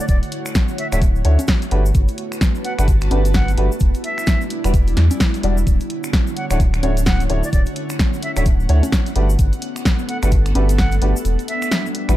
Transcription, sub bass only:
0.09 0.21 D1 loud
0.92 1.23 D1 medium
1.25 1.37 D2 loud
1.72 1.92 G1 loud
1.95 2.07 G1 loud
2.79 3.09 G1 loud
3.11 3.56 G1 loud
3.57 3.70 G1 medium
3.81 3.93 E1 loud
4.65 4.95 E1 loud
4.97 5.09 E2 loud
5.43 5.64 E1 loud
5.67 5.79 D1 loud
6.51 6.81 D1 loud
6.83 7.28 D1 loud
7.30 7.42 D1 medium
7.53 7.65 D1 loud
8.37 8.67 D1 medium
8.69 8.81 D2 loud
9.16 9.36 G1 loud
9.39 9.51 G1 loud
10.23 10.53 G1 loud
10.55 11.00 G1 loud
11.02 11.14 G1 medium
11.25 11.37 E1 loud
12.09 12.17 A1 loud

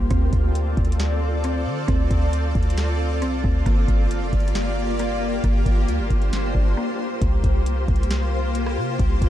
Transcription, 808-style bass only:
0.11 0.32 D2 loud
0.33 0.75 D2 loud
0.77 1.68 D2 loud
1.66 1.87 D3 loud
1.88 2.10 D2 loud
2.11 2.53 D2 loud
2.55 3.23 D2 loud
3.22 3.43 C2 loud
3.44 3.65 D2 loud
3.66 3.88 G1 loud
3.88 4.23 G1 loud
4.22 4.32 F1 loud
4.33 5.40 G1 loud
5.44 5.65 G1 loud
5.66 5.90 G1 loud
5.88 6.01 D2 loud
5.99 6.10 G1 loud
6.10 6.53 G1 loud
6.55 6.76 G1 loud
7.22 7.43 C2 loud
7.44 7.86 C2 loud
7.88 8.79 C2 loud
8.77 8.98 C3 loud
8.99 9.21 C2 loud
9.22 9.29 C2 loud

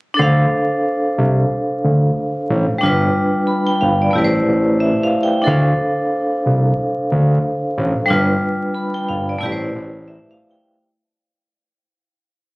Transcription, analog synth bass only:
0.19 0.46 D2 loud
1.18 1.45 C2 medium
1.84 2.11 D2 medium
2.50 2.67 A1 loud
2.83 3.10 G1 loud
3.82 4.09 G1 medium
4.15 4.42 A1 loud
4.48 4.92 A1 medium
5.47 5.74 D2 loud
6.46 6.73 C2 loud
7.12 7.39 D2 medium
7.78 7.94 A1 medium
8.11 8.38 G1 loud
9.10 9.37 G1 medium
9.43 9.70 A1 loud
9.76 10.19 A1 medium

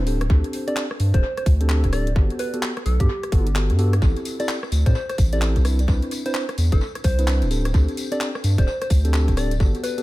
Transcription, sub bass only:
0.00 0.28 D1 medium
0.30 0.43 D2 loud
1.00 1.13 G2 medium
1.14 1.22 D1 loud
1.46 1.85 D2 loud
1.84 2.14 D1 medium
2.16 2.29 G1 loud
2.86 2.99 B1 medium
3.00 3.08 G2 loud
3.32 3.71 G1 loud
3.70 4.00 G2 medium
4.02 4.15 A1 loud
4.72 4.85 D2 medium
4.86 4.94 A2 loud
5.18 5.57 A1 loud
5.56 5.87 C2 medium
5.88 6.01 C2 loud
6.58 6.71 E2 medium
6.72 6.80 G1 loud
7.04 7.44 C2 loud
7.42 7.73 D1 medium
7.74 7.87 D2 loud
8.44 8.57 G2 medium
8.58 8.66 D1 loud
8.90 9.30 D2 loud
9.28 9.59 D1 medium
9.60 9.73 G1 loud

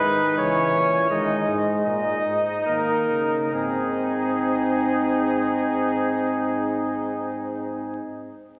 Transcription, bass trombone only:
0.02 0.39 D#3 medium
0.38 0.75 C#3 medium
0.74 1.10 A#2 medium
1.10 1.47 D#3 medium
1.48 1.86 G#2 medium
1.86 2.25 A#2 medium
2.26 2.66 G#2 medium
2.68 3.09 D#3 medium
3.10 3.53 C#3 medium
3.54 8.02 G#2 medium

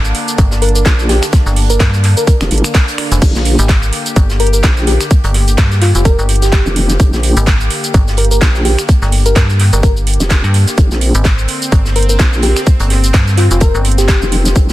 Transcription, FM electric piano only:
0.62 0.71 A#4 medium
0.75 0.82 A#4 medium
1.09 1.25 G4 medium
1.70 1.83 A#4 loud
2.17 2.24 A#4 medium
4.40 4.49 A#4 medium
4.53 4.60 A#4 medium
4.87 5.03 G4 medium
5.82 5.90 F4 medium
5.95 6.02 F4 medium
6.05 6.21 A#4 medium
6.42 7.08 G4 medium
8.18 8.26 A#4 medium
8.31 8.38 A#4 medium
8.65 8.81 G4 medium
9.26 9.39 A#4 loud
9.73 9.80 A#4 medium
9.83 9.92 A#4 medium
11.96 12.04 A#4 medium
12.09 12.16 A#4 medium
12.43 12.59 G4 medium
13.38 13.46 F4 medium
13.51 13.58 F4 medium
13.61 13.77 A#4 medium
13.98 14.64 G4 medium

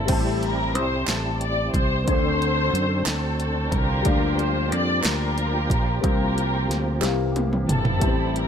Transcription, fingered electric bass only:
0.09 0.75 A1 loud
0.75 1.05 C2 medium
1.08 1.70 A1 medium
1.74 2.04 C2 medium
2.08 2.70 D2 medium
2.73 3.04 F#2 medium
3.07 3.69 D2 medium
3.72 4.03 C2 loud
4.06 4.72 D2 medium
4.72 5.02 F2 medium
5.05 5.67 D2 medium
5.70 6.01 A#1 medium
6.04 6.66 C2 loud
6.69 7.00 D2 medium
7.03 7.65 C2 loud
7.69 7.99 G1 medium
8.02 8.48 A1 loud

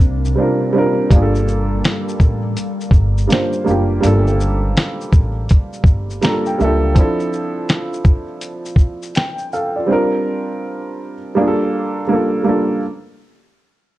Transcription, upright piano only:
0.00 0.35 G3 medium
0.00 0.37 C4 medium
0.00 0.38 D4 medium
0.00 0.40 F4 medium
0.00 0.41 A#4 medium
0.35 0.69 G3 medium
0.35 0.69 C4 medium
0.35 0.70 D4 medium
0.40 0.71 F4 medium
0.40 0.71 A#4 medium
0.73 1.05 G3 medium
0.73 1.06 C4 medium
0.73 1.07 D4 medium
0.73 1.07 F4 medium
0.78 1.08 A#4 medium
1.10 2.36 G3 medium
1.10 2.37 A#3 medium
1.10 2.37 D4 medium
1.14 2.38 F4 medium
1.14 1.21 G#4 medium
1.22 2.42 A4 medium
3.27 3.61 G3 medium
3.27 3.62 A#3 medium
3.27 3.62 D4 medium
3.32 3.63 F4 medium
3.32 3.64 C5 medium
3.64 3.98 G3 medium
3.64 3.98 A#3 medium
3.64 3.99 D4 medium
3.69 4.00 F4 medium
3.69 4.01 G4 medium
4.01 5.28 G3 medium
4.01 5.28 A#3 medium
4.01 5.29 D4 medium
4.05 5.30 F4 medium
4.05 5.31 A4 loud
6.21 6.54 G3 medium
6.21 6.55 A#3 medium
6.21 6.55 D4 medium
6.21 6.45 A#5 medium
6.26 6.56 F4 medium
6.26 6.57 A4 medium
6.47 6.59 G5 medium
6.58 6.91 G3 medium
6.58 6.92 A#3 medium
6.58 6.92 D4 medium
6.58 6.94 E5 medium
6.63 6.93 F4 medium
6.63 6.94 A4 loud
6.95 8.21 F3 loud
6.95 8.22 C4 medium
6.95 8.23 D4 medium
6.99 8.23 E4 medium
6.99 8.24 A4 loud
9.16 9.50 G5 medium
9.53 9.75 A4 medium
9.53 9.75 F5 medium
9.76 9.89 F4 medium
9.76 10.10 D5 medium
9.87 11.13 G3 medium
9.87 11.14 C4 medium
9.87 11.15 D4 medium
9.91 11.15 F4 medium
9.91 11.16 A#4 loud
11.35 11.99 G3 medium
11.35 12.00 A#3 medium
11.35 12.01 D4 medium
11.39 12.02 F4 medium
11.39 11.46 G#4 medium
11.48 12.06 A4 medium
12.07 12.40 G3 medium
12.07 12.41 A#3 medium
12.07 12.41 D4 medium
12.12 12.42 F4 medium
12.12 12.43 A4 medium
12.43 12.76 G3 medium
12.43 12.77 A#3 medium
12.43 12.78 D4 medium
12.48 12.78 F4 medium
12.48 12.79 A4 medium

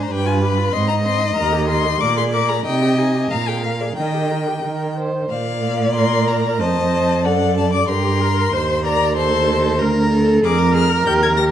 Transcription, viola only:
0.00 0.10 D4 medium
0.11 0.28 G4 medium
0.27 0.44 F4 medium
0.42 0.59 G4 medium
0.58 0.73 F4 medium
0.73 0.90 C4 medium
0.89 1.07 D#4 medium
1.05 1.22 C4 medium
1.21 1.36 D#4 medium
1.37 1.54 A#4 medium
1.53 1.70 G4 medium
1.69 1.85 A#4 medium
1.84 2.00 G4 medium
2.00 2.18 A#4 medium
2.17 2.35 G#4 medium
2.33 2.51 A#4 medium
2.50 2.65 G#4 medium
2.66 2.83 D#4 medium
2.82 3.00 G4 medium
2.98 3.16 D#4 medium
3.15 3.31 G4 medium
3.32 3.50 A#4 medium
3.48 3.65 G#4 medium
3.64 3.83 A#4 medium
3.81 3.97 G#4 medium
3.98 4.16 A#4 medium
4.14 4.33 G4 medium
4.31 4.49 A#4 medium
4.47 4.64 G4 soft
4.65 4.95 A#4 medium
4.98 5.30 C5 medium
5.95 6.62 A#4 medium
6.60 7.27 C5 medium
7.25 7.89 A4 medium
7.90 8.23 G4 medium
8.21 8.54 A#4 medium
8.53 8.85 C5 medium
8.85 9.16 D5 medium
9.17 9.83 C5 loud
9.81 10.12 A#4 medium
10.13 10.46 A4 loud
10.45 11.51 A#4 loud

